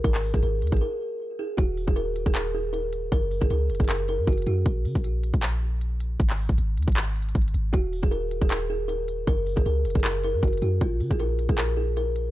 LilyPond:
<<
  \new Staff \with { instrumentName = "Kalimba" } { \time 4/4 \key ges \major \tempo 4 = 156 bes'8. aes'16 bes'8. aes'16 bes'4. aes'8 | ges'8. aes'16 bes'8. aes'16 bes'8 aes'8 bes'4 | bes'8. aes'16 bes'8. aes'16 bes'8 bes'8 ges'8 ges'8 | r1 |
r1 | ges'8. aes'16 bes'8. aes'16 bes'8 aes'8 bes'4 | bes'8. aes'16 bes'8. aes'16 bes'8 bes'8 ges'8 ges'8 | f'8. aes'16 bes'8. aes'16 bes'8 aes'8 bes'4 | }
  \new Staff \with { instrumentName = "808-style bass" } { \clef bass \time 4/4 \key ges \major aes,,8. aes,,16 aes,,8 ees,16 aes,,16 r2 | ees,,8. ees,,4 ees,,2~ ees,,16 | ges,,8. ges,,16 des,8 f,,16 ges,,4 ges,16 ges,,8 ges,8 | bes,,8 des16 bes,,4 bes,,2~ bes,,16 |
aes,,8. aes,,16 aes,,8 ees,16 aes,,4~ aes,,16 aes,,8 aes,,8 | ees,,8. ees,,4 ees,,2~ ees,,16 | ges,,8. ges,,16 des,8 f,,16 ges,,4 ges,16 ges,,8 ges,8 | bes,,8 des16 bes,,4 bes,,2~ bes,,16 | }
  \new DrumStaff \with { instrumentName = "Drums" } \drummode { \time 4/4 <hh bd>16 hc16 hho16 bd16 hh8 hh32 hh32 <hh bd>32 hh32 r4 r4 | <hh bd>8 hho16 bd16 hh8 hh16 bd16 <hc hh>4 hh8 hh8 | <hh bd>8 hho16 bd16 hh8 hh32 hh32 <hh bd>32 hh32 <hc hh>8 hh8 <hh bd>32 hh32 hh32 hh32 hh8 | <hh bd>8 hho16 bd16 hh8 hh16 bd16 <hc hh>4 hh8 hh8 |
<hh bd>16 hc16 hho16 bd16 hh8 hh32 hh32 <hh bd>32 hh32 \tuplet 3/2 { <hc hh>16 r16 r16 hh16 hh16 hh16 <hh bd>16 hh16 hh16 hh16 r16 r16 } | <hh bd>8 hho16 bd16 hh8 hh16 bd16 <hc hh>4 hh8 hh8 | <hh bd>8 hho16 bd16 hh8 hh32 hh32 <hh bd>32 hh32 <hc hh>8 hh8 <hh bd>32 hh32 hh32 hh32 hh8 | <hh bd>8 hho16 bd16 hh8 hh16 bd16 <hc hh>4 hh8 hh8 | }
>>